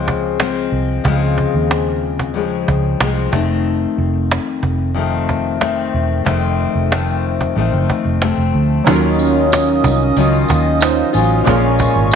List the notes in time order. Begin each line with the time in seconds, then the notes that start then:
Already playing: C#2 C#3 F3 G#3 C4
0.08 cajon bass
0.23 cajon slap
0.40 F3 G#3 C4, cajon slap
0.72 C2, cajon slap
0.88 cajon slap
1.04 C#2 C#3 F3 G#3, cajon bass
1.09 C4
1.38 cajon bass
1.53 D#2, cajon slap
1.71 cajon slap
1.87 cajon slap
2.02 cajon slap
2.19 cajon bass
2.34 C#3 F3 G#3 C4, cajon slap
2.68 C#2, cajon bass
2.83 cajon slap
3.00 C2 F3 G#3 C4, cajon slap
3.32 F1 D#3 A3 C4, cajon bass
3.37 F2
3.48 cajon slap
3.65 cajon slap
3.98 F1, cajon slap
4.13 cajon slap
4.31 cajon slap
4.48 cajon slap
4.63 F1, cajon bass
4.79 cajon slap
4.94 F2 D#3 A3 C4, cajon slap
5.29 cajon bass
5.44 cajon slap
5.61 D#3 A3 C4, cajon slap
5.93 E1, cajon slap
6.09 cajon slap
6.25 F1 F2 D#3 A3 C4, cajon bass
6.43 cajon slap
6.60 cajon slap
6.75 F1, cajon slap
6.90 F2 D#3 A3 C4, cajon slap
7.08 cajon slap
7.23 cajon slap
7.41 cajon bass
7.55 A1 F2 D#3 A3 C4, cajon slap
7.73 F#1
7.90 cajon bass
8.04 F1, cajon slap
8.21 F2 A3 C4, cajon slap
8.38 F1
8.53 D2, cajon slap
8.70 cajon slap
8.84 D#2 D#3 F#3 C#4 D#4 F4 D#5 F5 D#6, cajon bass, tambourine
8.89 C#4 F4 A4
8.96 A#4
9.19 cajon slap, tambourine
9.36 cajon slap
9.52 cajon slap, tambourine
9.69 cajon slap
9.84 C2, cajon bass, tambourine
10.00 cajon slap
10.17 C#2 D#3 F#3 C#4 F4, tambourine
10.48 D#2, cajon bass, tambourine
10.65 cajon slap
10.80 F#3 C#4 D#4 F4 C5, cajon slap, tambourine
11.13 A1 F#3 C#4 F4, cajon slap, tambourine
11.31 cajon slap
11.44 A#1 A#2 G#3 A#3 C#4 F4 A#4 G#5 C#6, cajon bass, tambourine
11.48 C#4 F4 A#4
11.79 cajon bass, tambourine
11.96 G#1, cajon slap
12.11 tambourine